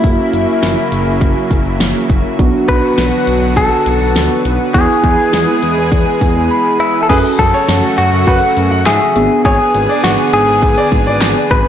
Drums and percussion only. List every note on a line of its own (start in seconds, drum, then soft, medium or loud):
0.04 kick loud
0.04 closed hi-hat medium
0.33 closed hi-hat medium
0.63 snare loud
0.63 closed hi-hat medium
0.92 closed hi-hat medium
1.21 kick loud
1.21 closed hi-hat medium
1.51 kick medium
1.51 closed hi-hat medium
1.80 snare loud
1.80 closed hi-hat medium
2.10 kick medium
2.10 closed hi-hat medium
2.39 kick loud
2.39 closed hi-hat medium
2.68 kick medium
2.68 closed hi-hat medium
2.98 snare loud
2.98 closed hi-hat medium
3.27 closed hi-hat medium
3.57 kick medium
3.57 closed hi-hat medium
3.86 closed hi-hat medium
4.16 snare loud
4.16 closed hi-hat medium
4.45 closed hi-hat medium
4.74 kick loud
4.74 closed hi-hat medium
5.04 kick medium
5.04 closed hi-hat medium
5.33 snare loud
5.33 closed hi-hat medium
5.63 closed hi-hat medium
5.92 kick loud
5.92 closed hi-hat medium
6.21 kick medium
6.21 closed hi-hat medium
7.10 kick loud
7.10 closed hi-hat medium
7.10 crash loud
7.39 kick medium
7.39 closed hi-hat medium
7.68 snare loud
7.68 closed hi-hat medium
7.98 closed hi-hat medium
8.27 kick medium
8.27 closed hi-hat medium
8.57 closed hi-hat medium
8.86 snare loud
8.86 clap loud
8.86 closed hi-hat medium
9.16 closed hi-hat medium
9.45 kick loud
9.45 closed hi-hat medium
9.75 closed hi-hat medium
10.04 snare loud
10.04 closed hi-hat medium
10.33 closed hi-hat medium
10.62 kick loud
10.62 closed hi-hat medium
10.92 kick medium
10.92 closed hi-hat medium
11.21 snare loud
11.21 clap loud
11.21 closed hi-hat medium
11.51 kick medium
11.51 closed hi-hat medium